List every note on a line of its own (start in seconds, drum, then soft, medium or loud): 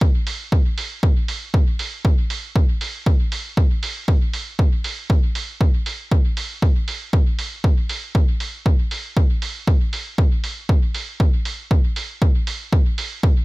0.01 kick loud
0.27 open hi-hat medium
0.52 kick loud
0.78 open hi-hat medium
1.03 kick loud
1.28 open hi-hat medium
1.54 kick loud
1.79 open hi-hat medium
2.05 kick loud
2.30 open hi-hat medium
2.56 kick loud
2.81 open hi-hat medium
3.06 kick loud
3.32 open hi-hat medium
3.57 kick loud
3.83 open hi-hat medium
4.08 kick loud
4.33 open hi-hat medium
4.59 kick loud
4.84 open hi-hat medium
5.10 kick loud
5.35 open hi-hat medium
5.61 kick loud
5.86 open hi-hat medium
6.12 kick loud
6.37 open hi-hat medium
6.62 kick loud
6.88 open hi-hat medium
7.13 kick loud
7.39 open hi-hat medium
7.64 kick loud
7.89 open hi-hat medium
8.15 kick loud
8.40 open hi-hat medium
8.66 kick loud
8.91 open hi-hat medium
9.17 kick loud
9.42 open hi-hat medium
9.67 kick loud
9.93 open hi-hat medium
10.18 kick loud
10.44 open hi-hat medium
10.69 kick loud
10.94 open hi-hat medium
11.20 kick loud
11.45 open hi-hat medium
11.71 kick loud
11.96 open hi-hat medium
12.22 kick loud
12.47 open hi-hat medium
12.73 kick loud
12.98 open hi-hat medium
13.23 kick loud